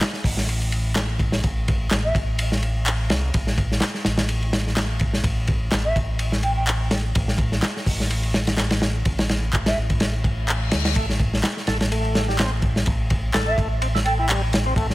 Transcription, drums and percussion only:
0.01 snare, clap, ride
0.13 snare
0.24 kick, open hi-hat
0.37 snare
0.49 ride
0.62 ride
0.72 ride
0.95 snare, clap, ride
1.19 kick, ride
1.32 snare
1.44 kick, ride
1.68 kick, ride
1.91 snare, clap, ride
2.15 kick, ride
2.39 ride
2.52 snare
2.63 ride
2.86 clap, ride
3.10 snare, ride
3.34 kick, ride
3.47 snare
3.58 kick, ride
3.72 snare
3.81 snare, clap, ride
3.94 snare
4.05 snare, ride
4.18 snare, ride
4.29 ride
4.42 ride
4.53 snare, ride
4.67 snare
4.77 snare, clap, ride
4.99 kick, ride
5.13 snare
5.24 kick, ride
5.47 kick, ride
5.72 snare, clap, ride
5.96 kick, ride
6.19 ride
6.32 snare
6.43 ride
6.67 clap, ride
6.91 snare, ride
7.15 kick, ride
7.28 snare
7.38 kick, ride
7.52 snare
7.63 snare, clap, ride
7.77 snare
7.86 kick, open hi-hat
8.00 snare
8.10 ride
8.23 ride
8.34 snare, ride
8.47 snare, ride
8.57 snare, clap, ride
8.70 snare, ride
8.82 snare, ride
9.05 kick, ride
9.19 snare, ride
9.29 snare, ride
9.53 kick, clap, ride
9.66 snare, ride
9.90 kick, ride
10.00 snare, ride
10.24 kick, ride
10.48 clap, ride
10.71 snare, ride
10.85 snare, ride
10.96 kick, ride
11.09 snare
11.20 kick, ride
11.34 snare
11.44 snare, clap, ride
11.57 snare
11.67 snare, ride
11.80 snare, ride
11.92 ride
12.05 ride
12.15 snare, ride
12.29 snare
12.39 snare, clap, ride
12.62 kick, ride
12.76 snare
12.86 kick, ride
13.10 kick, ride
13.34 snare, clap, ride
13.58 kick, ride
13.82 ride
13.95 snare
14.05 ride
14.29 clap, ride
14.53 snare, ride
14.76 kick, ride
14.90 snare

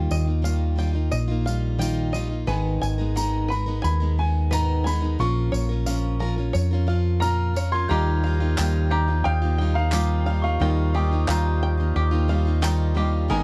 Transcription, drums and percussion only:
0.11 tambourine
0.45 tambourine
0.79 tambourine
1.12 tambourine
1.47 tambourine
1.81 tambourine
2.14 tambourine
2.49 tambourine
2.83 tambourine
3.17 tambourine
3.52 tambourine
3.84 tambourine
4.53 tambourine
4.87 tambourine
5.20 tambourine
5.54 tambourine
5.87 tambourine
6.55 tambourine
7.22 tambourine
7.56 tambourine
8.58 clap, tambourine
9.92 clap, tambourine
11.28 clap, tambourine
12.63 clap, tambourine

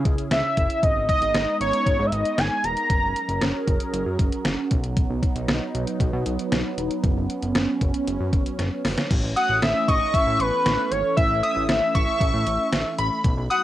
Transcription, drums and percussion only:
0.05 kick, closed hi-hat
0.18 closed hi-hat
0.31 snare, closed hi-hat
0.57 kick, closed hi-hat
0.70 closed hi-hat
0.83 kick, closed hi-hat
1.09 kick, closed hi-hat
1.22 closed hi-hat
1.34 snare, closed hi-hat
1.61 closed hi-hat
1.73 closed hi-hat
1.86 kick, closed hi-hat
2.12 closed hi-hat
2.25 closed hi-hat
2.38 snare, closed hi-hat
2.64 closed hi-hat
2.77 closed hi-hat
2.90 kick, closed hi-hat
3.16 closed hi-hat
3.29 closed hi-hat
3.41 snare, closed hi-hat
3.67 kick, closed hi-hat
3.80 closed hi-hat
3.94 closed hi-hat
4.19 kick, closed hi-hat
4.32 closed hi-hat
4.45 snare, closed hi-hat
4.71 kick, closed hi-hat
4.84 closed hi-hat
4.97 kick, closed hi-hat
5.23 kick, closed hi-hat
5.36 closed hi-hat
5.48 snare, closed hi-hat
5.75 closed hi-hat
5.87 closed hi-hat
6.00 kick, closed hi-hat
6.26 closed hi-hat
6.39 closed hi-hat
6.52 snare, closed hi-hat
6.78 closed hi-hat
6.91 closed hi-hat
7.04 kick, closed hi-hat
7.30 closed hi-hat
7.43 closed hi-hat
7.55 snare, closed hi-hat
7.81 kick, closed hi-hat
7.94 closed hi-hat
8.08 closed hi-hat
8.33 kick, closed hi-hat
8.46 closed hi-hat
8.59 snare, closed hi-hat
8.85 snare, open hi-hat
8.97 snare, closed hi-hat
9.11 kick, closed hi-hat, crash
9.37 closed hi-hat
9.62 snare, closed hi-hat
9.88 kick, closed hi-hat
10.14 kick, closed hi-hat
10.40 closed hi-hat
10.66 snare, closed hi-hat
10.92 closed hi-hat
11.17 kick, closed hi-hat
11.44 closed hi-hat
11.69 snare, closed hi-hat
11.95 kick, closed hi-hat
12.21 kick, closed hi-hat
12.47 closed hi-hat
12.73 snare, closed hi-hat
12.99 closed hi-hat
13.24 kick, closed hi-hat
13.51 closed hi-hat

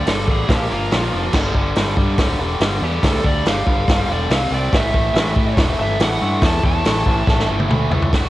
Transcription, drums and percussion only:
0.07 snare, open hi-hat
0.28 kick
0.49 kick, snare, open hi-hat
0.91 snare, open hi-hat
1.33 kick, snare, crash
1.54 kick
1.75 snare, open hi-hat
1.97 kick
2.18 kick, snare, open hi-hat
2.61 snare, open hi-hat
3.03 kick, snare, open hi-hat
3.24 kick
3.46 snare, open hi-hat
3.67 kick
3.88 kick, snare, open hi-hat
4.30 snare, open hi-hat
4.73 kick, snare, open hi-hat
4.94 kick
5.15 snare, open hi-hat
5.36 kick
5.57 kick, snare, open hi-hat
6.00 snare, open hi-hat
6.42 kick, snare, open hi-hat
6.63 kick
6.85 snare, open hi-hat
7.06 kick
7.27 kick, snare
7.40 snare
7.60 high tom
7.70 mid tom
7.91 floor tom
8.02 floor tom
8.13 kick, snare, open hi-hat

